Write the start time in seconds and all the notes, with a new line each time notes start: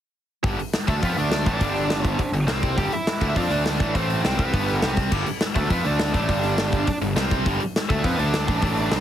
0.43 G1 G2 D3 G3, kick, open hi-hat
0.58 muted distorted electric guitar stroke, muted picked electric bass stroke, open hi-hat
0.73 snare, open hi-hat
0.87 D2 D3 A3 D4 A4, kick, open hi-hat
1.01 F2 F3 B3 C4 F4, kick, open hi-hat
1.06 B4
1.17 D2 D3 A3 D4 D5, open hi-hat
1.31 snare, open hi-hat
1.46 A1 A2 E3 A3 D4 D5, kick, open hi-hat
1.60 G1 G2 D3 G3, kick, open hi-hat
1.76 open hi-hat
1.90 snare, open hi-hat
2.04 C5, kick, open hi-hat
2.19 muted distorted electric guitar stroke, muted picked electric bass stroke, kick, open hi-hat
2.32 G1 G2 D3, open hi-hat
2.47 C2 C3 G3 C4 C5, snare, open hi-hat
2.63 kick, open hi-hat
2.77 G1 G2 D3 G3 G4 G5, kick, open hi-hat
2.90 E4 E5, muted picked electric bass stroke, muted distorted electric guitar stroke, open hi-hat
3.07 snare, open hi-hat
3.21 D2 D3 A3 D4, kick, open hi-hat
3.36 F2 F3 C4 D4 F4 D5, kick, open hi-hat
3.50 D2 D3 A3 D4, open hi-hat
3.65 D4 D5, snare, open hi-hat
3.80 A1 A2 E3 A3, kick, open hi-hat
3.95 A1 A2 E3 A3 C4 C5, kick, open hi-hat
4.10 open hi-hat
4.24 C2 C3 G3 C4, snare, open hi-hat
4.38 B3 B4, kick, open hi-hat
4.53 G1 G2 D3 G3, kick, open hi-hat
4.68 open hi-hat
4.80 C2 C3 G3 C4 A4, snare, open hi-hat
4.96 kick, open hi-hat
5.11 G1 G2 D3 G3, kick, crash
5.26 muted distorted electric guitar stroke, muted picked electric bass stroke, open hi-hat
5.41 snare, open hi-hat
5.55 D2 D3 A3 D4 A4, kick, open hi-hat
5.69 F2 F3 B3 C4 F4 B4, kick, open hi-hat
5.84 D2 D3 A3 D4 D5, open hi-hat
5.99 snare, open hi-hat
6.13 A1 A2 E3 A3 D4 D5, kick, open hi-hat
6.28 G1 G2 D3 G3, kick, open hi-hat
6.43 open hi-hat
6.58 snare, open hi-hat
6.72 kick, open hi-hat
6.87 muted distorted electric guitar stroke, muted picked electric bass stroke, kick, open hi-hat
7.01 G1 G2 D3, open hi-hat
7.16 C2 C3 G3 C4, snare, open hi-hat
7.31 kick, open hi-hat
7.46 G1 G2 D3 G3, kick, open hi-hat
7.60 muted picked electric bass stroke, muted distorted electric guitar stroke, open hi-hat
7.76 snare, open hi-hat
7.89 D2 D3 A3 D4 A4, kick, open hi-hat
8.03 F2 F3 B3 C4 F4 B4, kick, open hi-hat
8.18 D2 D3 A3 D4 D5, open hi-hat
8.34 snare, open hi-hat
8.47 A1 A2 E3 A3, kick, open hi-hat
8.62 A1 A2 E3 A3, kick, open hi-hat
8.77 open hi-hat
8.91 C2 C3 G3 C4, snare, open hi-hat